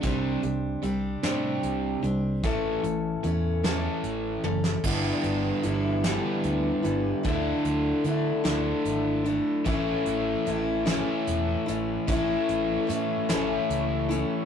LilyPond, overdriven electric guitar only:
\new Staff \with { instrumentName = "Overdriven electric guitar" } { \clef bass \time 6/8 \key a \mixolydian \tempo 4. = 50 <c g c'>8 <c g>8 <c g>8 <c g c'>4 <c g>8 | <a, e a>8 <a, e>8 <a, e>8 <a, e a>4 <a, e>8 | <g, d g b d' g'>4. <g, d g b d' g'>4. | <d a d' e'>4. <d a d' e'>4. |
<a, e a cis' e'>4. <a, e a cis' e'>4. | <a, e a cis' e'>4. <a, e a cis' e'>4. | }